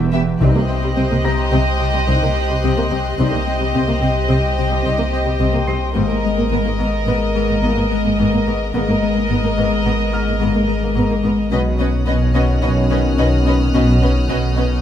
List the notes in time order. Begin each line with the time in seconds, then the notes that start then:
Already playing: E1 E2 E3 B4 E5 G5
0.12 E2 B3 G4 E5
0.41 C2 C3 G3 C4 D#4 G4 C5 D#5 G5 C6 F#6
0.56 C3 A#3
0.69 C4
0.83 C3 G3
0.96 C2 C3 C4
1.11 C3 A#3
1.24 C2 C3 C4 A#5 A#6
1.52 C2 C3 C4
1.80 C3
1.94 C3 G3
2.07 C2 C3 G3 C4 D#4
2.22 C3 A#3
2.36 C4
2.49 C3 G3
2.63 C2 C3 C4
2.77 C3 A#3
2.90 C2 C3 C4
3.18 C2 C3 G3 C4 D#4 G4 C5 D#5 G5
3.31 C3 A#3
3.47 C4
3.60 C3 G3
3.73 C2 C3 C4
3.87 C3 A#3
4.01 C2 C3 C4
4.29 C2 C3 C4
4.58 C3
4.70 C3 G3
4.83 C2 C3 G3 C4 D#4
4.98 C3 A#3
5.13 C4
5.25 C3 G3
5.39 C2 C3 C4
5.53 C3 A#3
5.67 C2 C3 C4 C6 C7
5.94 G#1 G#2 G#3 A#3 B3 A#4 D#5 A#5
6.08 G#2 A#3
6.24 G#3
6.37 G#2 A#3
6.51 G#1 G#2 G#3 B3
6.65 G#2 A#3
6.79 G#1 G#2 B3
7.07 G#1 G#2 B3
7.35 G#2
7.49 G#2 A#3
7.62 G#1 G#2 G#3 A#3 B3
7.76 G#2 A#3
7.91 G#3
8.04 G#2 A#3
8.18 G#1 G#2 B3
8.32 G#2 A#3
8.46 G#1 G#2 B3
8.73 G#1 G#2 G#3 A#3 B3 A#4 D#5 A#5
8.88 G#2 A#3
9.02 G#3
9.16 G#2 A#3
9.29 G#1 G#2 G#3 B3
9.44 G#2 A#3
9.57 G#1 G#2 B3
9.85 G#1 G#2 B3
10.12 G#2 F6
10.28 G#2 A#3
10.40 G#1 G#2 G#3 A#3 B3
10.55 G#2 A#3
10.67 G#3
10.82 G#2 A#3
10.95 G#1 G#2 B3
11.10 G#2 A#3
11.22 G#1 G#2 B3
11.51 B1 B2 D#3 C#4 B4 C#5 D#5 F#5 D#6 F#6
11.79 B3 C#4 B4 D#5
12.07 B1 B2 B3 C#4 B4 D#5 F6
12.34 B2 C#4 B4 D#5
12.61 B1 B2 C#4 B4 C#5 D#5 C#6
12.90 B2 C#4 B4 D#5
13.18 B1 B2 C#4 B4 D#5
13.46 B3 C#4 B4 D#5
13.74 B1 B2 C#4 B4 D#5
14.02 B2 C#4 B4 D#5
14.29 B1 B2 D#3 C#4 B4 C#5 D#5 F#5
14.56 B3 C#4 B4 D#5
14.61 G6